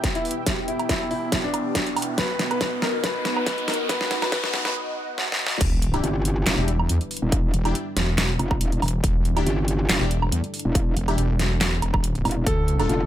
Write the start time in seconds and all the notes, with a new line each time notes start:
Already playing: B3 E4 G4 E5 G5, riser
0.04 kick, snare, closed hi-hat
0.15 E4, closed hi-hat
0.25 open hi-hat
0.31 closed hi-hat
0.46 kick, snare, closed hi-hat
0.68 E4, closed hi-hat
0.79 closed hi-hat, low woodblock
0.89 E4, kick, snare, closed hi-hat
1.11 E4, open hi-hat
1.32 kick, snare, closed hi-hat
1.44 D4
1.54 closed hi-hat, low woodblock
1.75 kick, snare, closed hi-hat
1.87 closed hi-hat
1.96 open hi-hat, low woodblock
2.02 closed hi-hat
2.18 D#4 F#4 B4 D#5 F#5, kick, snare, closed hi-hat
2.39 snare, closed hi-hat
2.51 B4, closed hi-hat, low woodblock
2.61 kick, snare, closed hi-hat
2.82 A#4, snare, open hi-hat
3.04 B4, kick, snare, closed hi-hat
3.25 snare, closed hi-hat
3.37 B4, low woodblock
3.46 kick, snare, closed hi-hat
3.58 closed hi-hat
3.68 A#4, snare, open hi-hat
3.74 closed hi-hat
3.89 B4, kick, snare, closed hi-hat
4.01 snare
4.11 snare, closed hi-hat
4.22 B4, snare, closed hi-hat, low woodblock
4.32 B4, kick, snare, closed hi-hat
4.44 snare
4.54 snare, open hi-hat
4.65 B4, snare
5.18 snare
5.32 snare
5.47 snare
5.61 E1 G3 D4 E4 B4 D5, kick, closed hi-hat, crash, sub drop
5.82 closed hi-hat
5.94 D4 E4 G4, closed hi-hat, low woodblock
6.04 G1, closed hi-hat
6.25 closed hi-hat
6.46 E1, snare, clap, closed hi-hat
6.58 E1 D4 E4 G4
6.68 closed hi-hat
6.79 low woodblock
6.89 E2, closed hi-hat
7.01 closed hi-hat
7.11 open hi-hat
7.17 closed hi-hat
7.22 E1
7.32 kick, closed hi-hat
7.54 E1, closed hi-hat
7.65 D4 E4 G4, closed hi-hat, low woodblock
7.75 closed hi-hat
7.97 E1, snare, closed hi-hat
8.18 snare, clap, closed hi-hat
8.39 F1, closed hi-hat, low woodblock
8.51 kick, low woodblock
8.61 E1, closed hi-hat
8.72 closed hi-hat
8.82 E1, open hi-hat, low woodblock
8.88 closed hi-hat
9.04 E1 A4, kick, closed hi-hat
9.25 closed hi-hat
9.37 D4 E4 G4, closed hi-hat, low woodblock
9.47 G1, closed hi-hat
9.68 closed hi-hat
9.89 E1, snare, clap, closed hi-hat
10.01 E1 D4 E4 G4
10.11 closed hi-hat
10.22 low woodblock
10.32 E2, closed hi-hat
10.44 closed hi-hat
10.54 open hi-hat
10.59 closed hi-hat
10.65 E1
10.75 kick, closed hi-hat
10.97 E1, closed hi-hat
11.08 D4 E4 G4, closed hi-hat, low woodblock
11.18 E1, closed hi-hat
11.39 snare, closed hi-hat
11.61 snare, clap, closed hi-hat
11.82 E1, closed hi-hat, low woodblock
11.94 kick, low woodblock
12.04 closed hi-hat
12.15 closed hi-hat
12.25 E1, open hi-hat, low woodblock
12.31 closed hi-hat
12.46 D2 F3 A3 A4 D5, kick, closed hi-hat
12.68 closed hi-hat
12.79 D4 F4 A4, closed hi-hat, low woodblock
12.89 F1, closed hi-hat